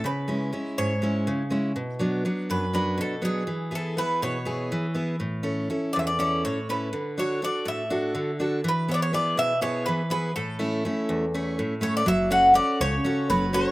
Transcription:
<<
  \new Staff \with { instrumentName = "Bouzouki" } { \time 7/8 \key a \major \tempo 4 = 122 b'4 r8 cis''4. r8 | r4. b'8 b'8 a'8 gis'8~ | gis'8 a'8 b'8 cis''4. r8 | r4. d''32 e''32 d''16 d''8 cis''8 b'8~ |
b'8 cis''8 d''8 e''4. r8 | b'8 cis''32 d''32 cis''16 d''8 e''8 cis''8 b'8 b'8 | a'2~ a'8 r8 cis''16 d''16 | e''8 fis''8 d''8 cis''4 b'8 cis''8 | }
  \new Staff \with { instrumentName = "Steel-string acoustic guitar" } { \time 7/8 \key a \major cis8 <gis cis' e'>8 <gis cis' e'>8 gis,8 <gis cis' e'>8 cis8 <gis cis' e'>8 | b,8 <fis b d'>8 <fis b d'>8 fis,8 <fis b d'>8 b,8 <fis b d'>8 | e8 <b e' gis'>8 <b e' gis'>8 b,8 <b e' gis'>8 e8 <b e' gis'>8 | a,8 <cis' e' a'>8 <cis' e' a'>8 e,8 <cis' e' a'>8 a,8 <cis' e' a'>8 |
d8 <d' fis' a'>8 <d' fis' a'>8 a,8 <d' fis' a'>8 d8 <d' fis' a'>8 | e8 <b e' gis'>8 <b e' gis'>8 b,8 <b e' gis'>8 e8 <b e' gis'>8 | a,8 <a cis' e'>8 <a cis' e'>8 e,8 <a cis' e'>8 a,8 <a cis' e'>8 | fis8 <cis' fis' a'>8 <cis' fis' a'>8 cis8 <cis' fis' a'>8 fis8 <cis' fis' a'>8 | }
  \new Staff \with { instrumentName = "Upright bass" } { \clef bass \time 7/8 \key a \major r2. r8 | r2. r8 | r2. r8 | r2. r8 |
r2. r8 | r2. r8 | r2. r8 | fis,,4. cis,8 r8 fis,,4 | }
>>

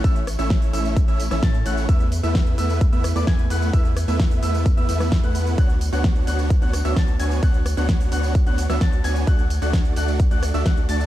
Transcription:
<<
  \new Staff \with { instrumentName = "Grand piano" } { \time 4/4 \key b \dorian \tempo 4 = 130 e'''16 r8 e'''8. e'''8 r16 e'''16 r16 e'''16 a'''16 r16 fis'''8 | e'''16 r8 e'''8. e'''8 r16 e'''16 r16 d'''16 gis'''16 r16 fis'''8 | e'''16 r8 e'''8. e'''8 r16 e'''16 e'''8. fis'''8. | fis'''16 r8 fis'''8. fis'''8 r16 fis'''16 r16 e'''16 a'''16 r16 gis'''8 |
fis'''16 r8 fis'''8. fis'''8 r16 fis'''16 r16 e'''16 a'''16 r16 gis'''8 | fis'''16 r8 fis'''8. fis'''8 r16 fis'''16 r16 e'''16 fis'''16 r16 a'''8 | }
  \new Staff \with { instrumentName = "Supersaw synth" } { \time 4/4 \key b \dorian <a cis' e' cis'' e''>16 r8 <a cis' e' cis'' e''>8. <a cis' e' cis'' e''>8 r16 <a cis' e' cis'' e''>16 r16 <a cis' e' cis'' e''>16 <a cis' e' cis'' a''>16 r16 <a cis' e' cis'' fis''>8 | <a b e' b' e''>16 r8 <a b e' b' e''>8. <a b e' b' e''>8 r16 <a b e' b' e''>16 r16 <a b e' b' d''>16 <a b e' b' gis''>16 r16 <a b e' b' fis''>8 | <a b e' b' e''>16 r8 <a b e' b' e''>8. <a b e' b' e''>8 r16 <a b e' b' e''>16 <a b e' b' e''>8. <a b e' b' fis''>8. | <b d' fis' cis'' fis''>16 r8 <b d' fis' cis'' fis''>8. <b d' fis' cis'' fis''>8 r16 <b d' fis' cis'' fis''>16 r16 <b d' fis' cis'' e''>16 <b d' fis' cis'' a''>16 r16 <b d' fis' cis'' gis''>8 |
<b d' fis' cis'' fis''>16 r8 <b d' fis' cis'' fis''>8. <b d' fis' cis'' fis''>8 r16 <b d' fis' cis'' fis''>16 r16 <b d' fis' cis'' e''>16 <b d' fis' cis'' a''>16 r16 <b d' fis' cis'' gis''>8 | <a d' fis' d'' fis''>16 r8 <a d' fis' d'' fis''>8. <a d' fis' d'' fis''>8 r16 <a d' fis' d'' fis''>16 r16 <a d' fis' d'' e''>16 <a d' fis' d'' fis''>16 r16 <a d' fis' d'' a''>8 | }
  \new Staff \with { instrumentName = "Sub bass" } { \clef bass \time 4/4 \key b \dorian a,,8. a,,8. a,,8. a,,8 a,,16 a,8 a,,8 | e,8. e,8. e,8. e,8 e,16 e,8 e,8 | e,8. e,8. e,8. e,16 e,8. e,8. | d,8. d,8. d,8. d,8 d,16 d,8 d,8 |
d,8. d,8. d,8. d,8 d,16 d,8 d,8 | d,8. d,8. d,8. d,8 d,16 d,8 d,8 | }
  \new DrumStaff \with { instrumentName = "Drums" } \drummode { \time 4/4 <hh bd cymr tamb>16 hh16 <hho cymr ss tamb>16 <hh tamb>16 <hh bd cymr sn tamb>16 hho16 <hho cymr tamb>16 <hh tamb>16 <hh bd cymr tamb>16 hh16 <hho cymr tamb>16 <hh ss sn tamb>16 <hh bd cymr sn tamb>16 hh16 <hho cymr tamb>16 <hh tamb>16 | <hh bd cymr tamb>16 hh16 <hho cymr tamb>16 <hh tamb>16 <hh bd cymr sn tamb>16 hh16 <hho cymr tamb>16 <hh tamb>16 <hh bd cymr tamb>16 hh16 <hho cymr ss tamb>16 <hh tamb>16 <hh bd cymr sn>16 hh16 <hho cymr tamb>16 <hh tamb>16 | <hh bd cymr tamb>16 hh16 <hho cymr ss tamb>16 <hh tamb>16 <hh bd cymr sn tamb>16 hho16 <hho cymr tamb>16 <hh tamb>16 <hh bd cymr tamb>16 hh16 <hho cymr tamb>16 <hh ss sn tamb>16 <hh bd cymr sn tamb>16 hh16 <hho cymr tamb>16 <hh tamb>16 | <hh bd cymr tamb>16 hh16 <hho cymr tamb>16 <hh tamb>16 <hh bd cymr sn tamb>16 hh16 <hho cymr tamb>16 <hh tamb>16 <hh bd cymr tamb>16 hh16 <hho cymr ss tamb>16 <hh tamb>16 <hh bd cymr sn tamb>16 hh16 <hho cymr tamb>16 <hh tamb>16 |
<hh bd cymr tamb>16 hh16 <hho cymr ss tamb>16 <hh tamb>16 <hh bd cymr sn tamb>16 hho16 <hho cymr tamb>16 <hh tamb>16 <hh bd cymr tamb>16 hh16 <hho cymr tamb>16 <hh ss sn tamb>16 <hh bd cymr sn tamb>16 hh16 <hho cymr tamb>16 <hh tamb>16 | <hh bd cymr tamb>16 hh16 <hho cymr tamb>16 <hh tamb>16 <hh bd cymr sn tamb>16 hh16 <hho cymr tamb>16 <hh tamb>16 <hh bd cymr tamb>16 hh16 <hho cymr ss tamb>16 <hh tamb>16 <hh bd cymr sn tamb>16 hh16 <hho cymr tamb>16 <hh tamb>16 | }
>>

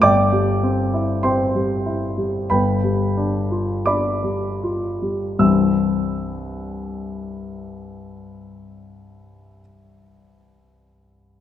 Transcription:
<<
  \new Staff \with { instrumentName = "Grand piano" } { \time 4/4 \key c \major \tempo 4 = 40 <d'' g'' d'''>4 <c'' g'' c'''>4 <b' g'' b''>4 <d'' b'' d'''>4 | <c, g, e g c' e' e'''>1 | }
  \new Staff \with { instrumentName = "Grand piano" } { \time 4/4 \key c \major g,,16 g16 c'16 e'16 c'16 g16 e'16 g16 g,,16 g16 d'16 f'16 d'16 g16 f'16 g16 | r1 | }
>>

